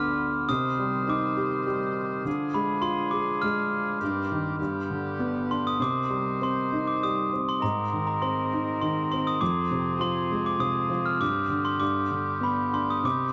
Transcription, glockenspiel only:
0.00 0.50 F6 medium
0.49 1.10 D#6 medium
1.10 1.93 D6 medium
2.54 2.82 B5 medium
2.82 3.13 C6 medium
3.11 3.39 D6 medium
3.42 5.14 F6 medium
5.51 5.66 C6 medium
5.67 5.73 D#6 medium
5.82 6.44 D6 medium
6.43 6.89 C6 medium
6.88 7.01 D6 medium
7.03 7.45 D#6 medium
7.49 7.62 C6 medium
7.62 8.06 A#5 medium
8.07 8.23 A#5 medium
8.22 8.80 C6 medium
8.82 8.95 C6 medium
9.12 9.26 C6 medium
9.27 9.41 D#6 medium
9.41 10.03 D6 medium
10.01 10.48 C6 medium
10.46 10.62 D6 medium
10.60 11.07 D#6 medium
11.06 11.21 F6 medium
11.21 11.63 D6 medium
11.65 11.80 C6 medium
11.80 12.44 D6 medium
12.43 12.57 B5 medium
12.74 12.90 C6 medium
12.90 12.97 D#6 medium
13.05 13.33 D6 medium

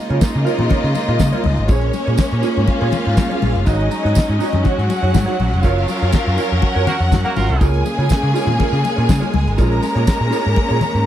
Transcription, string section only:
0.00 1.69 C#3 medium
0.00 5.62 G#3 medium
0.00 1.69 A#3 medium
0.00 1.69 F4 medium
1.70 3.65 A#3 medium
1.70 3.65 C#4 loud
3.68 7.58 F#3 medium
3.68 5.63 C#4 medium
5.65 7.60 C#4 medium
5.65 7.60 A#4 loud
7.62 9.57 C#3 medium
7.62 11.06 G#3 medium
7.62 9.57 A#3 medium
9.58 11.06 A#3 medium
9.58 11.06 C#4 loud

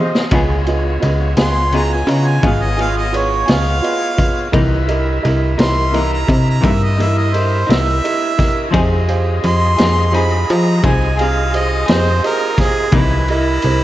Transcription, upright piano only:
0.00 0.23 G4 medium
0.00 0.23 G#4 medium
0.00 0.24 C5 medium
0.00 0.23 D#5 medium
0.31 0.58 F4 medium
0.31 0.59 G#4 medium
0.31 0.59 B4 medium
0.31 0.59 D#5 medium
0.67 0.94 F4 medium
0.67 0.94 G#4 medium
0.67 0.94 B4 medium
0.67 0.94 D#5 medium
1.00 1.28 F4 medium
1.00 1.28 G#4 medium
1.00 1.28 B4 medium
1.00 1.29 D#5 medium
1.37 1.64 F4 medium
1.37 1.64 G#4 soft
1.37 1.64 B4 soft
1.37 1.65 D#5 medium
1.73 1.99 F4 medium
1.73 2.00 G#4 soft
1.73 2.00 B4 soft
1.73 2.00 D#5 medium
2.07 2.34 F4 medium
2.07 2.34 G#4 soft
2.07 2.34 B4 soft
2.07 2.34 D#5 medium
2.42 2.69 F4 medium
2.42 2.69 G#4 soft
2.42 2.70 B4 medium
2.42 2.70 D#5 medium
2.77 3.04 F4 medium
2.77 3.04 G#4 soft
2.77 3.04 B4 soft
2.77 3.05 D#5 medium
3.12 3.39 F4 medium
3.12 3.39 G#4 medium
3.12 3.39 B4 medium
3.12 3.40 C#5 medium
3.48 3.74 F4 medium
3.48 3.75 G#4 medium
3.48 3.75 B4 medium
3.48 3.75 D#5 medium
3.82 4.09 F4 medium
3.82 4.10 G#4 medium
3.82 4.09 B4 medium
3.82 4.10 D#5 medium
4.17 4.44 F4 medium
4.17 4.44 G#4 soft
4.17 4.44 B4 soft
4.17 4.44 D#5 medium
4.52 4.79 E4 medium
4.52 4.79 G4 medium
4.52 4.79 A#4 medium
4.52 4.80 D#5 medium
4.88 5.14 E4 medium
4.88 5.14 G4 medium
4.88 5.15 A#4 medium
4.88 5.15 D#5 medium
5.22 5.49 E4 medium
5.22 5.49 G4 medium
5.22 5.50 A#4 medium
5.22 5.50 D#5 medium
5.57 5.84 E4 medium
5.57 5.84 G4 medium
5.57 5.84 A#4 medium
5.57 5.84 D#5 medium
5.93 6.20 E4 medium
5.93 6.19 G4 medium
5.93 6.20 A#4 soft
5.93 6.20 D#5 medium
6.27 6.54 E4 medium
6.27 6.54 G4 soft
6.27 6.54 A#4 medium
6.27 6.55 D#5 medium
6.62 6.89 E4 medium
6.62 6.90 G4 medium
6.62 6.90 A#4 medium
6.62 6.90 E5 medium
6.98 7.25 E4 medium
6.98 7.25 G4 medium
6.98 7.25 A#4 soft
6.98 7.25 D#5 medium
7.33 7.59 E4 medium
7.33 7.60 G4 medium
7.33 7.60 A#4 medium
7.33 7.60 D#5 medium
7.69 7.95 E4 medium
7.69 7.95 G4 medium
7.69 7.95 A#4 medium
7.69 7.96 D#5 medium
8.03 8.30 E4 medium
8.03 8.30 G4 medium
8.03 8.30 A#4 medium
8.03 8.30 D#5 medium
8.37 8.64 E4 medium
8.37 8.64 G4 soft
8.37 8.64 A#4 soft
8.37 8.65 D#5 medium
8.73 9.00 G4 medium
8.73 9.00 G#4 medium
8.73 9.00 C5 medium
8.73 9.00 D#5 medium
9.08 9.34 G4 medium
9.08 9.35 G#4 medium
9.08 9.35 C5 medium
9.08 9.35 F5 medium
9.43 9.69 G4 medium
9.43 9.69 G#4 medium
9.43 9.69 C5 medium
9.43 9.70 D#5 medium
9.78 10.04 G4 medium
9.78 10.04 G#4 medium
9.78 10.05 C5 medium
9.78 10.04 D#5 medium
10.12 10.39 G4 medium
10.12 10.39 G#4 medium
10.12 10.39 C5 medium
10.12 10.40 D#5 medium
10.50 10.75 G4 soft
10.50 10.75 G#4 soft
10.50 10.76 C5 soft
10.50 10.76 D#5 medium
10.82 11.09 G4 medium
10.82 11.10 G#4 soft
10.82 11.10 C5 medium
10.82 11.10 D#5 medium
11.19 11.45 G4 medium
11.19 11.45 G#4 medium
11.19 11.45 C5 soft
11.19 11.45 F5 medium
11.53 11.79 G4 medium
11.53 11.80 G#4 medium
11.53 11.80 C5 medium
11.53 11.80 D#5 medium
11.88 12.15 G4 medium
11.88 12.15 G#4 medium
11.88 12.15 C5 medium
11.88 12.15 D#5 medium
12.23 12.50 G4 medium
12.23 12.50 G#4 medium
12.23 12.50 C5 medium
12.23 12.50 D#5 medium
12.59 12.85 G4 medium
12.59 12.85 G#4 soft
12.59 12.85 C5 medium
12.59 12.85 F5 medium
12.94 13.20 E4 medium
12.94 13.20 G4 medium
12.94 13.20 A#4 medium
12.94 13.20 D#5 medium
13.29 13.55 E4 medium
13.29 13.55 G4 medium
13.29 13.55 A#4 medium
13.29 13.56 D#5 medium
13.63 13.84 E4 medium
13.63 13.84 G4 medium
13.63 13.84 A#4 soft
13.63 13.84 C5 medium

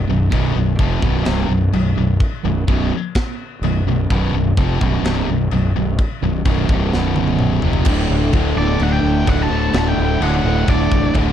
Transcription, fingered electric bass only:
0.09 0.31 B0 medium
0.32 0.55 B0 medium
0.56 0.78 B0 medium
0.79 1.01 F1 medium
1.03 1.25 B0 medium
1.26 1.48 C1 medium
1.49 1.72 B0 medium
1.73 1.96 B0 medium
1.97 2.20 B0 medium
2.45 2.67 B0 medium
2.68 2.90 B0 medium
3.62 3.84 B0 medium
3.87 4.09 B0 medium
4.11 4.32 B0 loud
4.33 4.56 B0 medium
4.57 4.79 F1 loud
4.81 5.03 B0 loud
5.03 5.26 C1 medium
5.28 5.50 B0 medium
5.53 5.74 B0 medium
5.76 5.97 B0 medium
6.23 6.45 B0 medium
6.45 6.68 B0 medium
6.68 6.91 C1 medium
6.94 7.60 B0 medium
7.63 7.85 F1 medium
7.86 8.08 D1 medium
8.10 8.32 D1 medium
8.33 8.56 D1 medium
8.57 8.79 D1 medium
8.80 9.03 D1 loud
9.03 9.26 D1 medium
9.27 9.49 D1 loud
9.50 9.73 D1 medium
9.74 9.96 D1 loud
9.97 10.20 D1 loud
10.21 10.43 D1 medium
10.44 10.67 D1 loud
10.68 10.90 D1 loud
10.91 11.14 C1 medium
11.14 11.32 D1 medium

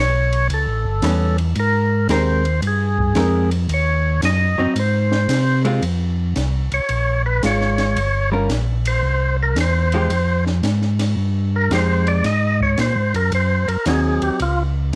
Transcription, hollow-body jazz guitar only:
1.03 1.36 G3 medium
1.03 1.36 B3 medium
1.03 1.36 C#4 medium
2.10 2.42 G#3 medium
2.10 2.42 C4 medium
2.10 2.42 G4 medium
2.10 2.43 A#4 medium
3.16 3.48 G#3 medium
3.16 3.49 C4 medium
3.16 3.49 G4 medium
3.16 3.49 A#4 medium
4.58 4.74 F#3 medium
4.58 4.74 C4 medium
4.58 4.75 D#4 medium
5.65 5.81 G#3 medium
5.65 5.81 C4 medium
5.65 5.81 F4 medium
7.44 7.97 G#3 medium
7.44 7.97 F4 medium
8.32 8.48 G3 medium
8.32 8.48 C#4 medium
8.32 8.49 F4 medium
8.32 8.49 A#4 medium
9.94 10.09 F3 medium
9.94 10.09 G#3 medium
9.94 10.10 D#4 medium
9.94 10.10 G4 medium
11.71 12.25 F3 medium
11.71 12.25 G#3 medium
11.71 12.25 D#4 medium
11.71 12.26 G4 medium
13.86 14.40 F#3 medium
13.86 14.40 C4 medium
13.86 14.41 D#4 medium

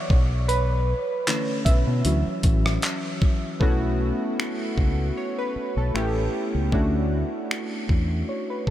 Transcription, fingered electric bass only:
0.10 0.93 B1 loud
1.66 1.84 B1 medium
1.87 2.02 B2 loud
2.05 2.22 D2 loud
2.44 2.76 A1 medium
3.61 4.11 B1 loud
4.78 5.10 C#2 medium
5.56 muted fingered electric bass stroke soft
5.77 5.92 B1 medium
5.95 6.27 A1 medium
6.55 6.70 C#2 medium
6.72 7.22 D2 loud
7.89 8.22 E2 medium

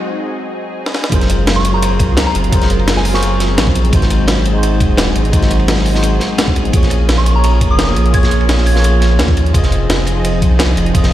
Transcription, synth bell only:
1.56 1.72 C#6 medium
1.74 1.79 A#5 medium
1.82 1.88 A#5 medium
2.27 2.48 A#5 medium
2.97 3.13 G#5 loud
3.15 3.40 C#6 medium
7.18 7.34 C#6 loud
7.36 7.41 A#5 medium
7.44 7.50 A#5 medium
7.71 7.92 D#6 medium
8.14 8.35 G#6 medium
8.67 9.16 G#6 medium

